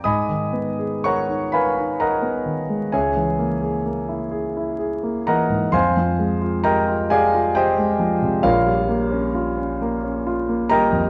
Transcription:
0.04 2.89 G#2 soft
0.04 1.00 D#5 medium
0.04 1.00 G#5 soft
0.04 1.00 B5 medium
0.04 1.04 D#6 medium
0.29 0.69 D#3 soft
0.53 0.93 B3 soft
0.79 1.19 G#4 soft
1.04 1.44 A#4 soft
1.04 1.50 C#5 soft
1.04 1.50 F#5 soft
1.04 1.50 A#5 soft
1.04 1.53 C#6 medium
1.28 1.66 D#4 soft
1.52 1.90 A#4 soft
1.52 1.97 B4 soft
1.52 1.97 F5 soft
1.52 1.97 G#5 soft
1.52 1.99 B5 medium
1.77 2.14 D#4 soft
2.00 2.90 A#4 soft
2.00 2.90 D#5 soft
2.00 2.89 F#5 soft
2.00 2.93 A#5 medium
2.22 2.60 B3 soft
2.46 2.83 D#3 soft
2.69 2.93 G#3 soft
2.92 5.70 C#2 soft
2.92 3.60 G#4 soft
2.92 4.77 C#5 soft
2.92 4.77 E5 soft
2.92 4.81 G#5 medium
3.17 3.54 E3 soft
3.38 3.76 A#3 soft
3.62 4.00 G#4 soft
3.85 4.23 A#3 soft
4.09 4.47 E4 soft
4.31 4.70 G#4 soft
4.57 4.95 E4 soft
4.79 5.17 G#4 soft
5.03 5.41 A#3 soft
5.27 5.65 E3 soft
5.27 5.71 A#4 medium
5.27 5.71 D#5 medium
5.27 5.70 F#5 medium
5.27 5.73 A#5 medium
5.49 5.73 G#2 soft
5.72 8.42 F2 soft
5.72 6.61 C5 medium
5.72 6.61 F5 medium
5.72 6.61 G#5 medium
5.72 6.64 C6 medium
5.97 6.33 F3 soft
6.19 6.56 G#3 soft
6.41 6.79 F4 soft
6.64 7.02 G4 soft
6.64 7.08 A#4 medium
6.64 7.08 D#5 medium
6.64 7.08 G5 medium
6.64 7.11 A#5 medium
6.88 7.25 F4 soft
7.10 7.48 G4 soft
7.10 7.54 G#4 medium
7.10 7.54 D5 medium
7.10 7.54 F5 medium
7.10 7.57 G#5 medium
7.34 7.71 F4 soft
7.55 8.42 G4 medium
7.55 8.42 C5 medium
7.55 8.42 D#5 medium
7.55 8.45 G5 medium
7.78 8.15 G#3 soft
8.00 8.36 F3 soft
8.22 8.45 C3 soft
8.43 11.10 A#1 medium
8.43 9.33 F4 medium
8.43 10.23 A#4 medium
8.43 10.23 C#5 medium
8.43 10.26 F5 medium
8.66 9.03 G3 soft
8.88 9.26 A#3 soft
9.12 9.49 C#4 soft
9.35 9.73 F4 soft
9.57 9.95 C#4 soft
9.82 10.19 A#3 soft
10.04 10.41 C#4 soft
10.27 10.63 F4 medium
10.49 10.85 A#3 soft
10.69 11.07 G3 soft
10.69 11.10 A#4 medium
10.69 11.10 D#5 medium
10.69 11.10 G5 medium
10.69 11.10 A#5 medium
10.92 11.10 F2 soft

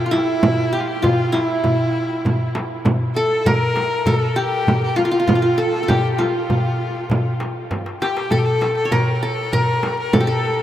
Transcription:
0.00 0.48 G4 medium
0.04 0.14 F4 medium
0.04 0.17 F4 medium
0.11 1.08 E4 medium
0.11 0.75 E4 medium
0.11 darbuka tek medium
0.11 frame drum medium
0.43 frame drum loud
0.43 darbuka dum medium
0.59 darbuka ka soft
0.73 1.98 G4 medium
0.73 0.81 G4 medium
0.73 darbuka ka soft
0.80 0.89 F4 medium
0.87 1.05 G4 medium
1.02 1.38 F4 medium
1.02 1.36 F4 medium
1.02 darbuka dum medium
1.02 frame drum medium
1.20 darbuka ka soft
1.32 2.72 E4 medium
1.32 2.55 E4 medium
1.32 darbuka tek medium
1.32 frame drum medium
1.64 frame drum medium
1.64 darbuka dum medium
2.25 darbuka dum medium
2.25 frame drum medium
2.55 darbuka tek medium
2.55 frame drum medium
2.85 darbuka dum medium
2.85 frame drum loud
3.00 darbuka ka soft
3.15 3.49 A4 medium
3.15 3.52 A4 medium
3.15 darbuka ka soft
3.46 4.13 A#4 loud
3.46 4.09 A#4 medium
3.46 darbuka dum medium
3.46 frame drum medium
3.61 darbuka ka soft
3.76 darbuka tek medium
3.76 frame drum medium
4.06 5.24 A4 medium
4.06 4.39 A4 medium
4.06 darbuka dum loud
4.06 frame drum medium
4.36 5.61 G4 medium
4.36 4.83 G4 medium
4.67 darbuka dum medium
4.67 frame drum medium
4.84 4.99 G4 medium
4.96 5.04 F4 medium
4.96 5.60 F4 medium
4.96 frame drum medium
5.05 5.11 F4 medium
5.11 5.19 F4 medium
5.20 5.27 F4 medium
5.27 5.35 F4 medium
5.27 darbuka dum medium
5.27 frame drum medium
5.35 5.42 F4 medium
5.42 6.18 F4 medium
5.42 darbuka ka soft
5.58 5.83 A4 medium
5.58 5.90 A4 medium
5.83 7.00 A4 medium
5.88 7.14 G4 medium
5.88 6.13 G4 medium
5.88 darbuka dum medium
5.88 frame drum medium
6.04 darbuka ka soft
6.13 6.20 G4 soft
6.18 7.53 F4 medium
6.18 7.40 F4 medium
6.18 darbuka tek medium
6.18 frame drum medium
6.34 darbuka ka soft
6.50 darbuka dum medium
6.50 frame drum medium
6.64 darbuka ka soft
6.80 darbuka ka soft
7.10 darbuka dum medium
7.10 frame drum medium
7.40 darbuka tek medium
7.40 frame drum medium
7.71 darbuka tek medium
7.71 frame drum medium
7.86 darbuka ka medium
8.01 8.32 G4 medium
8.01 9.27 G4 medium
8.01 darbuka tek medium
8.17 darbuka ka medium
8.31 8.40 A4 medium
8.31 8.98 A4 medium
8.31 frame drum medium
8.31 darbuka dum medium
8.38 8.46 G4 medium
8.45 8.76 A4 medium
8.45 darbuka ka soft
8.61 darbuka tek medium
8.61 frame drum medium
8.77 8.93 A4 medium
8.85 9.87 C#5 medium
8.91 9.15 A#4 medium
8.91 9.29 A#4 medium
8.91 frame drum medium
8.91 darbuka dum loud
9.15 9.24 A#4 medium
9.22 9.54 A4 medium
9.22 9.59 A4 medium
9.52 9.98 A#4 medium
9.52 10.19 A#4 loud
9.52 frame drum medium
9.52 darbuka dum medium
9.83 darbuka tek medium
9.83 frame drum medium
9.99 10.14 A#4 medium
10.13 10.27 A4 medium
10.13 darbuka dum medium
10.13 frame drum loud
10.20 10.62 G4 medium
10.27 10.62 A4 medium
10.27 darbuka ka soft
10.44 darbuka ka soft

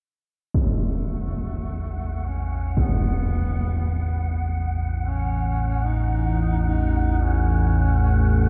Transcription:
0.54 8.49 A1 medium
0.54 8.49 E2 medium
0.54 2.27 A3 medium
0.54 8.49 F#5 medium
0.54 impact medium
2.26 2.83 C#4 medium
2.77 impact medium
2.81 4.47 B3 medium
5.01 5.86 C#4 medium
5.85 6.65 D#4 medium
6.66 7.25 D#4 medium
7.23 8.49 C#4 medium

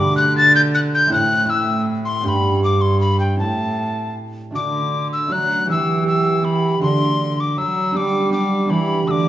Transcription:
0.00 1.12 D3 medium
0.00 1.13 D3 medium
0.00 1.06 A3 medium
0.00 1.11 D4 medium
0.00 1.12 F#4 medium
0.00 0.17 D6 loud
0.17 0.36 F#6 loud
0.38 0.55 A6 loud
0.56 0.62 G6 loud
0.75 0.81 F#6 loud
0.95 1.13 G6 loud
1.07 2.26 A2 medium
1.07 1.44 A3 medium
1.07 1.45 C4 medium
1.07 1.47 E4 medium
1.12 2.26 A2 medium
1.12 1.51 F#6 loud
1.45 2.25 A3 medium
1.45 2.25 C4 medium
1.45 2.26 E4 medium
1.50 1.82 E6 loud
2.05 2.24 C6 medium
2.21 3.42 G2 medium
2.21 3.39 B3 medium
2.21 3.40 D4 medium
2.21 3.41 G4 medium
2.21 2.29 C6 medium
2.25 3.41 G2 medium
2.25 2.63 B5 loud
2.64 2.83 D6 medium
2.81 3.00 C6 medium
3.01 3.19 B5 medium
3.20 3.38 G5 medium
3.36 4.56 A2 soft
3.36 4.54 C4 soft
3.36 4.55 E4 soft
3.36 4.15 A5 medium
3.40 4.36 A2 medium
4.51 5.70 D3 soft
4.51 5.26 A3 soft
4.51 5.27 D4 soft
4.51 5.28 F#4 soft
4.55 5.33 D3 medium
4.55 5.08 D6 medium
5.13 5.34 E6 medium
5.27 5.70 F#3 soft
5.27 5.68 A3 soft
5.27 5.69 D4 soft
5.27 5.69 F#4 soft
5.32 5.68 F#3 medium
5.32 5.69 F#6 medium
5.66 6.80 E3 medium
5.66 6.84 E3 soft
5.66 6.01 B3 soft
5.66 6.02 G4 soft
5.71 6.07 E6 medium
6.03 6.41 B3 soft
6.03 6.42 G4 soft
6.07 6.46 E6 medium
6.42 6.82 B3 soft
6.42 6.83 G4 soft
6.42 6.82 B5 medium
6.79 7.59 D3 medium
6.79 7.97 D3 soft
6.79 7.95 A3 soft
6.79 7.91 D4 soft
6.79 7.96 F#4 soft
6.79 7.42 C6 medium
7.40 7.60 D6 medium
7.58 7.97 F#3 medium
7.58 7.97 F#3 soft
7.58 7.98 E6 medium
7.91 9.09 G3 soft
7.91 8.72 G3 medium
7.91 8.28 B3 soft
7.91 8.29 D4 soft
7.91 8.30 G4 soft
7.97 8.32 D6 medium
8.29 8.65 B3 soft
8.29 8.67 D4 soft
8.29 8.68 G4 soft
8.29 8.72 D6 medium
8.66 9.07 B3 soft
8.66 9.05 D4 soft
8.66 9.09 G4 soft
8.70 9.09 E3 medium
8.70 9.08 E3 medium
8.70 9.09 B5 medium
9.05 9.29 D3 medium
9.05 9.29 A3 soft
9.05 9.29 D4 soft
9.05 9.29 F#4 soft
9.05 9.12 E6 medium
9.11 9.29 D6 medium

